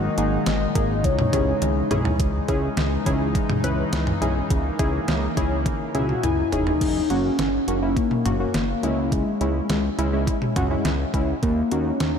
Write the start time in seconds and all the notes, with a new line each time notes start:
Already playing: A#2 D#3 G#3 D#4 D#5
0.18 G#1 A#3 D#4 G#4, closed hi-hat
0.46 G#1 D#5, snare, closed hi-hat
0.75 G#1 A#3 D#4 G#4, kick, closed hi-hat
1.04 C#2 C#3 E3 G#3 C#5, kick, closed hi-hat
1.19 mid tom
1.33 C#2 C#4 E4 G#4, kick, closed hi-hat, cowbell
1.62 C#2, closed hi-hat, high tom
1.91 B1 C#4 E4 G#4, closed hi-hat, mid tom
2.05 floor tom
2.19 C#2 C#3 E3 G#3 D#4, kick, closed hi-hat
2.48 C#2 C#4 E4 G#4, kick, closed hi-hat
2.77 C#2, snare, closed hi-hat
3.06 C#2 C#4 E4 G#4, kick, closed hi-hat
3.35 kick, closed hi-hat
3.50 mid tom
3.64 C#2 C#4 E4 B4, closed hi-hat
3.93 C#2, snare, closed hi-hat
4.07 mid tom
4.22 B1 C#4 E4 G#4, closed hi-hat
4.50 C#2 A#3, kick, closed hi-hat
4.79 C#2 C#4 E4 G#4, kick, closed hi-hat
5.08 C#2, snare, closed hi-hat
5.37 C#2 C#4 E4 G#4, kick, closed hi-hat
5.66 kick, closed hi-hat, high tom
5.95 C#2 C#4 E4 F#4 G#4 E5, closed hi-hat, mid tom
6.09 mid tom
6.23 C#2 E4 G#5, closed hi-hat, mid tom
6.52 E1 C#4 D#4 E4 G#4, closed hi-hat, floor tom
6.67 floor tom
6.81 F#1 D#4, kick, closed hi-hat, crash
7.10 F#1 A#3 C#4 F#4, closed hi-hat
7.39 F#1, snare, closed hi-hat
7.68 F#1 A#3 C#4 F#4, closed hi-hat
7.82 A#3 C#4 E4
7.97 A#3, kick, closed hi-hat
8.11 mid tom
8.25 F#1 A#3 C#4 F#4, closed hi-hat, mid tom
8.40 A#3 C#4 F#4
8.54 F#1 A#3, snare, closed hi-hat
8.83 C#2 G#3 C#4 E4, closed hi-hat
9.12 G#3, kick, closed hi-hat
9.41 C#2 G#3 C#4 E4, closed hi-hat
9.69 C#2, snare, closed hi-hat
9.99 C#2 G#3 C#4 E4, closed hi-hat
10.13 G#3 C#4 E4
10.27 kick, closed hi-hat
10.42 mid tom
10.56 C#2 G#3 C#4 F#4, kick, closed hi-hat, mid tom
10.71 G#3 C#4 E4
10.85 C#2, snare, closed hi-hat
11.14 C#2 G#3 C#4 E4, kick, closed hi-hat
11.43 D#2 A#3, kick, closed hi-hat
11.71 D#2 A#3 C#4 D#4 F#4, closed hi-hat
12.00 D#2, snare, closed hi-hat